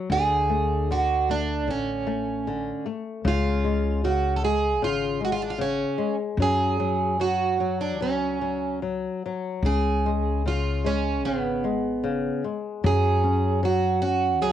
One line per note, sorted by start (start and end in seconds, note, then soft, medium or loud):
0.10 1.68 D2 medium
0.10 0.89 D3 medium
0.10 0.91 G#4 medium
0.49 0.88 A3 soft
0.90 1.28 D3 soft
0.90 1.31 F#4 medium
1.29 1.67 A3 soft
1.29 1.70 D4 medium
1.67 2.70 A1 medium
1.67 2.06 D3 soft
1.67 2.83 C#4 medium
2.07 2.45 A3 soft
2.47 2.85 D3 soft
2.86 3.24 A3 soft
3.25 4.81 C#2 medium
3.25 4.03 C#3 medium
3.25 4.04 F4 medium
3.64 4.02 G#3 soft
4.04 4.42 C#3 medium
4.04 4.36 F#4 medium
4.36 4.43 A4 medium
4.44 4.81 G#3 soft
4.44 4.84 G#4 medium
4.81 5.83 G#1 medium
4.81 5.19 C#3 soft
4.81 5.25 F4 medium
5.21 5.58 G#3 soft
5.25 5.32 F#4 medium
5.33 5.41 F4 medium
5.42 5.50 D4 medium
5.50 5.59 F4 medium
5.59 5.96 C#3 soft
5.59 6.15 C#4 medium
5.98 6.37 G#3 soft
6.37 7.99 F#2 medium
6.37 6.79 F#3 medium
6.42 7.21 G#4 medium
6.80 7.18 F#3 soft
7.20 7.58 F#3 soft
7.20 7.81 F#4 medium
7.60 7.98 F#3 soft
7.81 8.00 D4 medium
7.99 9.06 C#2 medium
7.99 8.39 F#3 soft
7.99 8.79 C#4 medium
8.41 8.81 F#3 soft
8.82 9.22 F#3 soft
9.26 9.64 F#3 soft
9.62 11.24 C#2 medium
9.62 10.44 C#3 soft
9.62 10.42 G#4 medium
10.06 10.44 G#3 soft
10.46 10.84 C#3 soft
10.46 10.88 F4 medium
10.84 11.23 G#3 soft
10.84 11.23 C#4 medium
11.24 12.29 G#1 medium
11.24 11.64 C#3 medium
11.24 12.42 B3 medium
11.64 12.03 G#3 soft
12.04 12.43 C#3 soft
12.45 12.83 G#3 soft
12.84 14.41 F#2 medium
12.84 13.62 F#3 medium
12.84 13.60 G#4 medium
13.24 13.62 C#4 soft
13.63 14.01 F#3 soft
13.63 14.01 F#4 medium
14.02 14.40 C#4 soft
14.02 14.39 F#4 medium
14.41 14.52 C#2 medium
14.41 14.52 F#3 medium
14.41 14.52 G#4 medium